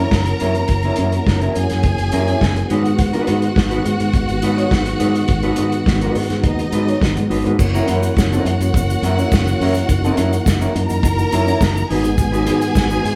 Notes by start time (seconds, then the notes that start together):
Already playing: E3 A#3 C#4 F#4 A#4 C#5 A#5
0.00 C#4 E4
0.11 F#1, muted clean electric guitar stroke, kick, snare
0.26 muted clean electric guitar stroke, closed hi-hat
0.40 F#2 C#4 E4 A#4, closed hi-hat
0.55 muted clean electric guitar stroke, closed hi-hat
0.68 F#1, muted clean electric guitar stroke, kick, closed hi-hat
0.82 C#4 E4 A#4, closed hi-hat
0.96 F#2 C#4 E4, closed hi-hat
1.00 A#4
1.12 muted clean electric guitar stroke, closed hi-hat
1.27 F#1, muted clean electric guitar stroke, kick, snare
1.41 C#4 E4 A#4, closed hi-hat
1.55 F#2 G#4 G#5, muted clean electric guitar stroke, closed hi-hat
1.70 F#2, muted clean electric guitar stroke, snare, closed hi-hat
1.83 F#1, muted clean electric guitar stroke, kick, closed hi-hat
1.98 F#1, muted clean electric guitar stroke, closed hi-hat
2.12 F#2 C#4 E4 A#4, closed hi-hat
2.28 C#4 E4 C#5, closed hi-hat
2.41 F#1, muted clean electric guitar stroke, kick, snare
2.56 muted clean electric guitar stroke, closed hi-hat
2.68 G#2 D#3 G#3 B3 D#4 F#4 B4 F#5, closed hi-hat
2.85 muted clean electric guitar stroke, closed hi-hat
2.99 muted clean electric guitar stroke, kick, closed hi-hat
3.13 D#4 F#4 B4, closed hi-hat
3.27 G#2 D#4 F#4 B4, closed hi-hat
3.42 muted clean electric guitar stroke, closed hi-hat
3.56 G#1, muted clean electric guitar stroke, kick, snare
3.71 D#4 F#4 B4, closed hi-hat
3.85 G#2, muted clean electric guitar stroke, closed hi-hat
4.00 G#2, muted clean electric guitar stroke, closed hi-hat
4.13 G#1, muted clean electric guitar stroke, kick, closed hi-hat
4.29 G#1, muted clean electric guitar stroke, closed hi-hat
4.42 G#2 D#4 F#4 B4, closed hi-hat
4.58 D#4 F#4 C#5, closed hi-hat
4.71 G#1, muted clean electric guitar stroke, kick, snare
4.86 muted clean electric guitar stroke, closed hi-hat
5.00 G#2 D#4 F#4 B4, closed hi-hat
5.15 muted clean electric guitar stroke, closed hi-hat
5.28 G#1, muted clean electric guitar stroke, kick, closed hi-hat
5.43 D#4 F#4 B4, closed hi-hat
5.56 G#2 D#4 F#4 B4, closed hi-hat
5.72 muted clean electric guitar stroke, closed hi-hat
5.86 G#1, muted clean electric guitar stroke, kick, snare
6.01 D#4 F#4 B4, closed hi-hat
6.15 G#2, muted clean electric guitar stroke, open hi-hat
6.30 G#2, muted clean electric guitar stroke, snare, closed hi-hat
6.43 D#2 D#4 D#5, muted clean electric guitar stroke, kick, closed hi-hat
6.59 muted clean electric guitar stroke, closed hi-hat
6.72 G#2 D#4 F#4 B4, closed hi-hat
6.88 D#4 F#4 C#5, closed hi-hat
7.01 G#1, muted clean electric guitar stroke, kick, snare
7.17 G#2, muted clean electric guitar stroke, closed hi-hat
7.30 G#1 D#4 F#4 B4, open hi-hat
7.46 G#2 D#4 F#4 B4, closed hi-hat
7.59 F#1 E3 A#3 C#4 F#4 F#5, muted clean electric guitar stroke, kick, crash, shaker
7.75 C#4 E4 A#4, shaker
7.88 F#2 C#4 E4 A#4, closed hi-hat, shaker
8.03 muted clean electric guitar stroke, closed hi-hat, shaker
8.17 F#1, muted clean electric guitar stroke, kick, snare, shaker
8.32 C#4 E4 A#4, closed hi-hat, shaker
8.45 F#2, muted clean electric guitar stroke, closed hi-hat
8.60 F#2, muted clean electric guitar stroke, closed hi-hat, shaker
8.74 F#1, muted clean electric guitar stroke, kick, closed hi-hat, shaker
8.90 muted clean electric guitar stroke, closed hi-hat, shaker
9.02 F#2 C#4 E4 A#4, closed hi-hat, shaker
9.19 C#4 E4 C#5, closed hi-hat, shaker
9.32 F#1, muted clean electric guitar stroke, kick, snare, shaker
9.47 muted clean electric guitar stroke, shaker
9.61 F#2 C#4 E4 A#4, open hi-hat
9.74 muted clean electric guitar stroke, closed hi-hat, shaker
9.87 F#1 D#4, muted clean electric guitar stroke, kick, closed hi-hat, shaker
10.04 C#4 E4 A#4, closed hi-hat, shaker
10.17 F#2 C#4 E4 A#4, closed hi-hat, shaker
10.33 muted clean electric guitar stroke, closed hi-hat, shaker
10.46 F#1, muted clean electric guitar stroke, kick, snare, shaker
10.61 C#4 E4 A#4, closed hi-hat, shaker
10.74 F#2 A#4 A#5, muted clean electric guitar stroke, closed hi-hat
10.89 F#2, muted clean electric guitar stroke, closed hi-hat, shaker
11.03 F#1, muted clean electric guitar stroke, kick, closed hi-hat, shaker
11.19 muted clean electric guitar stroke, shaker
11.32 F#2 C#4 E4 A#4, closed hi-hat, shaker
11.48 C#4 E4 C#5, closed hi-hat, shaker
11.61 F#1, muted clean electric guitar stroke, kick, snare, shaker
11.77 muted clean electric guitar stroke, shaker
11.89 G#1 D#3 G#3 B3 D#4 F#4 G#4 B4 G#5, open hi-hat
12.04 muted clean electric guitar stroke, closed hi-hat, shaker
12.18 muted clean electric guitar stroke, kick, closed hi-hat, shaker
12.32 D#4 F#4 B4, closed hi-hat, shaker
12.46 G#2 D#4 F#4 B4, closed hi-hat, shaker
12.61 muted clean electric guitar stroke, closed hi-hat, shaker
12.75 G#1, muted clean electric guitar stroke, kick, snare, shaker
12.90 D#4 F#4 B4, closed hi-hat, shaker
13.03 G#2, muted clean electric guitar stroke, closed hi-hat